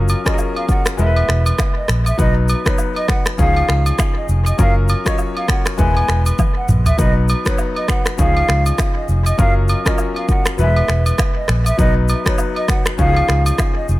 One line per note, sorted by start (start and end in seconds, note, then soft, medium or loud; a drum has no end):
0.00 0.13 F#1 loud
0.00 0.25 F#3 medium
0.00 0.10 C#4 medium
0.00 0.10 F4 medium
0.00 0.11 A#4 medium
0.08 high agogo medium
0.08 shaker medium
0.25 0.76 F#3 medium
0.25 0.77 C#4 medium
0.25 0.77 F4 medium
0.25 0.32 G#4 medium
0.25 0.37 D#5 medium
0.25 finger snap medium
0.25 kick medium
0.25 cross-stick loud
0.25 shaker medium
0.34 0.81 A#4 medium
0.38 low woodblock medium
0.38 shaker medium
0.56 0.67 F5 medium
0.56 high agogo medium
0.69 0.84 F#5 medium
0.69 kick medium
0.69 shaker medium
0.86 finger snap medium
0.86 cross-stick loud
0.86 shaker medium
0.97 1.20 E1 loud
0.97 1.83 G#3 medium
0.97 1.83 B3 medium
0.97 1.83 E4 medium
0.97 1.07 A#4 medium
0.97 1.44 E5 medium
0.97 shaker medium
1.06 1.87 B4 medium
1.16 high agogo medium
1.29 1.50 E1 medium
1.29 finger snap medium
1.29 cross-stick medium
1.29 shaker soft
1.46 high agogo medium
1.46 shaker medium
1.58 finger snap medium
1.58 kick medium
1.58 cross-stick medium
1.58 low woodblock medium
1.58 shaker medium
1.77 1.87 D#5 medium
1.88 2.10 A#1 medium
1.88 finger snap medium
1.88 cross-stick medium
1.88 shaker medium
2.06 2.17 E5 medium
2.06 high agogo medium
2.06 shaker medium
2.17 2.53 B1 loud
2.17 2.50 F#3 medium
2.17 2.50 B3 medium
2.17 2.50 D#4 medium
2.17 2.51 B4 medium
2.17 2.34 D#5 loud
2.17 kick loud
2.17 shaker medium
2.48 high agogo medium
2.48 shaker medium
2.65 3.16 F#3 medium
2.65 3.17 B3 medium
2.65 3.17 D#4 medium
2.65 3.18 B4 medium
2.65 2.77 C#5 medium
2.65 finger snap medium
2.65 kick medium
2.65 cross-stick loud
2.65 shaker medium
2.78 low woodblock medium
2.78 shaker medium
2.96 3.07 D#5 medium
2.96 high agogo medium
3.08 3.24 F#5 medium
3.08 finger snap medium
3.08 kick medium
3.08 cross-stick medium
3.08 shaker medium
3.26 finger snap medium
3.26 cross-stick loud
3.26 shaker medium
3.37 3.60 C#2 loud
3.37 4.23 F3 medium
3.37 4.23 C#4 medium
3.37 4.24 D#4 medium
3.37 4.24 G#4 medium
3.37 3.84 F5 loud
3.37 kick medium
3.37 shaker medium
3.56 high agogo medium
3.69 3.90 C#2 medium
3.69 finger snap medium
3.69 cross-stick medium
3.69 shaker soft
3.86 high agogo medium
3.86 shaker medium
3.98 finger snap medium
3.98 kick medium
3.98 cross-stick medium
3.98 low woodblock medium
3.98 shaker medium
4.17 4.27 D#5 medium
4.29 4.50 F1 medium
4.29 shaker medium
4.46 4.57 D#5 medium
4.46 high agogo medium
4.46 shaker medium
4.57 4.93 F#1 loud
4.57 4.90 F#3 medium
4.57 4.90 C#4 medium
4.57 4.90 F4 medium
4.57 4.91 A#4 medium
4.57 4.74 F5 loud
4.57 kick loud
4.57 shaker medium
4.88 high agogo medium
4.88 shaker medium
5.05 5.56 F#3 medium
5.05 5.57 C#4 medium
5.05 5.57 F4 medium
5.05 5.58 C#5 medium
5.05 5.17 D#5 medium
5.05 finger snap medium
5.05 kick medium
5.05 cross-stick loud
5.05 shaker medium
5.18 low woodblock medium
5.18 shaker medium
5.37 5.47 F5 medium
5.37 high agogo medium
5.48 5.64 F#5 medium
5.48 finger snap medium
5.48 kick medium
5.48 cross-stick medium
5.48 shaker medium
5.66 finger snap medium
5.66 cross-stick medium
5.66 shaker medium
5.77 6.00 E1 loud
5.77 6.63 G#3 medium
5.77 6.63 B3 medium
5.77 6.64 E4 medium
5.77 6.64 B4 medium
5.77 6.24 G#5 medium
5.77 kick medium
5.77 shaker medium
5.97 high agogo medium
6.08 6.30 E1 medium
6.08 finger snap medium
6.08 cross-stick medium
6.08 shaker soft
6.26 high agogo medium
6.26 shaker medium
6.38 kick medium
6.38 high tom medium
6.38 low woodblock medium
6.38 shaker medium
6.57 6.67 F#5 medium
6.68 6.90 A#1 medium
6.68 mid tom medium
6.68 shaker medium
6.86 6.97 E5 medium
6.86 floor tom medium
6.86 high agogo medium
6.86 shaker medium
6.97 7.33 B1 loud
6.97 7.30 F#3 medium
6.97 7.30 B3 medium
6.97 7.30 D#4 medium
6.97 7.31 B4 medium
6.97 7.14 D#5 loud
6.97 kick loud
6.97 shaker medium
7.28 high agogo medium
7.28 shaker medium
7.45 7.97 F#3 medium
7.45 7.97 B3 medium
7.45 7.97 D#4 medium
7.45 7.98 B4 medium
7.45 7.57 C#5 medium
7.45 finger snap medium
7.45 kick medium
7.45 cross-stick loud
7.45 shaker medium
7.58 low woodblock medium
7.58 shaker medium
7.76 7.87 D#5 medium
7.76 high agogo medium
7.88 8.04 F#5 medium
7.88 finger snap medium
7.88 kick medium
7.88 cross-stick medium
7.88 shaker medium
8.06 finger snap medium
8.06 cross-stick loud
8.06 shaker medium
8.17 8.40 C#2 loud
8.17 9.03 F3 medium
8.17 9.03 C#4 medium
8.17 9.04 D#4 medium
8.17 9.04 G#4 medium
8.17 8.64 F5 loud
8.17 kick medium
8.17 shaker medium
8.37 high agogo medium
8.49 8.70 C#2 medium
8.49 finger snap medium
8.49 cross-stick medium
8.49 shaker soft
8.66 high agogo medium
8.66 shaker medium
8.78 finger snap medium
8.78 kick medium
8.78 cross-stick medium
8.78 low woodblock medium
8.78 shaker medium
8.97 9.07 D#5 medium
9.08 9.30 F1 medium
9.08 shaker medium
9.26 9.37 D#5 medium
9.26 high agogo medium
9.26 shaker medium
9.37 9.73 F#1 loud
9.37 9.70 F#3 medium
9.37 9.70 C#4 medium
9.37 9.70 F4 medium
9.37 9.71 A#4 medium
9.37 9.54 F5 loud
9.37 kick loud
9.37 shaker medium
9.68 high agogo medium
9.68 shaker medium
9.85 10.36 F#3 medium
9.85 10.37 C#4 medium
9.85 10.37 F4 medium
9.85 10.38 A#4 medium
9.85 9.97 D#5 medium
9.85 finger snap medium
9.85 kick medium
9.85 cross-stick loud
9.85 shaker medium
9.98 low woodblock medium
9.98 shaker medium
10.16 10.27 F5 medium
10.16 high agogo medium
10.28 10.44 F#5 medium
10.28 kick medium
10.28 shaker medium
10.46 finger snap medium
10.46 cross-stick loud
10.46 shaker medium
10.57 10.80 E1 loud
10.57 10.65 F#3 medium
10.57 11.43 B3 medium
10.57 11.43 E4 medium
10.57 11.44 B4 medium
10.57 11.04 E5 loud
10.57 shaker medium
10.64 11.46 G#3 medium
10.76 high agogo medium
10.88 11.10 E1 medium
10.88 finger snap medium
10.88 cross-stick medium
10.88 shaker soft
11.06 high agogo medium
11.06 shaker medium
11.18 finger snap medium
11.18 kick medium
11.18 cross-stick medium
11.18 low woodblock medium
11.18 shaker medium
11.37 11.47 D#5 medium
11.48 11.70 A#1 medium
11.48 finger snap medium
11.48 cross-stick medium
11.48 shaker medium
11.66 11.77 E5 medium
11.66 high agogo medium
11.66 shaker medium
11.77 12.12 B1 loud
11.77 12.10 F#3 medium
11.77 12.10 B3 medium
11.77 12.10 D#4 medium
11.77 12.11 B4 medium
11.77 11.94 D#5 loud
11.77 kick loud
11.77 shaker medium
12.08 high agogo medium
12.08 shaker medium
12.25 12.77 F#3 medium
12.25 12.77 B3 medium
12.25 12.77 D#4 medium
12.25 12.78 B4 medium
12.25 12.37 C#5 medium
12.25 finger snap medium
12.25 kick medium
12.25 cross-stick loud
12.25 shaker medium
12.38 low woodblock medium
12.38 shaker medium
12.56 12.67 D#5 medium
12.56 high agogo medium
12.68 12.84 F#5 medium
12.68 finger snap medium
12.68 kick medium
12.68 cross-stick medium
12.68 shaker medium
12.86 finger snap medium
12.86 cross-stick loud
12.86 shaker medium
12.97 13.20 C#2 loud
12.97 13.83 F3 medium
12.97 13.83 C#4 medium
12.97 13.84 D#4 medium
12.97 13.07 F#4 medium
12.97 13.44 F5 loud
12.97 kick medium
12.97 shaker medium
13.06 13.87 G#4 medium
13.16 high agogo medium
13.28 13.50 C#2 medium
13.28 finger snap medium
13.28 cross-stick medium
13.28 shaker soft
13.46 high agogo medium
13.46 shaker medium
13.58 finger snap medium
13.58 kick medium
13.58 cross-stick medium
13.58 low woodblock medium
13.58 shaker medium
13.77 13.87 D#5 medium
13.88 14.00 F1 medium
13.88 shaker medium